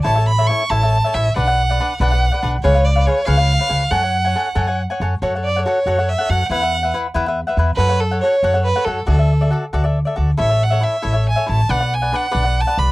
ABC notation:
X:1
M:6/8
L:1/16
Q:3/8=93
K:F#m
V:1 name="Violin"
a2 b2 c'2 a4 e2 | f6 f4 z2 | c2 d2 c2 ^e6 | f8 z4 |
c2 d2 c4 e2 f2 | f4 z8 | B2 A2 c4 B2 A2 | A4 z8 |
e2 f2 e4 g2 a2 | f2 g2 f4 a2 b2 |]
V:2 name="Cavaquinho"
[EAce] [Ace] z [Ace] [EAce] z [EAce] [Ace] z [Ace] [EAce] z | [DBdf] [Bdf] z [Bdf] [DBdf] z [DBdf] [Bdf] z [Bdf] [DBdf] z | [GBc^e] [Bce] z [Bce] [GBce] z [GBce] [Bce] z [Bce] [GBce] z | [Acfg] [cfg] z [cfg] [Acfg] z [Acfg] [cfg] z [cfg] [Acfg] z |
[FAcf] [Acf] z [Acf] [FAcf] z [FAcf] [Acf] z [Acf] [FAcf] z | [EBef] [Bef] z [Bef] [EBef] z [EBef] [Bef] z [Bef] [EBef] z | [FAcf] [Acf] z [Acf] [FAcf] z [FAcf] [Acf] z [Acf] [FAcf] z | [FAde] [Ade] z [Ade] [FAde] z [FAde] [Ade] z [Ade] [FAde] z |
[EAce] [Ace] z [Ace] [EAce] z [EAce] [Ace] z [Ace] [EAce] z | [DBdf] [Bdf] z [Bdf] [DBdf] z [DBdf] [Bdf] z [Bdf] [DBdf] z |]
V:3 name="Upright bass" clef=bass
A,,,6 A,,,4 A,,,2 | B,,,6 B,,,4 B,,,2 | C,,6 C,,4 C,,2 | F,,6 F,,4 F,,2 |
F,,6 F,,4 F,,2 | E,,6 E,,4 E,,2 | F,,6 F,,4 F,,2 | D,,6 D,,4 D,,2 |
A,,,6 A,,,4 A,,,2 | B,,,6 B,,,4 ^B,,,2 |]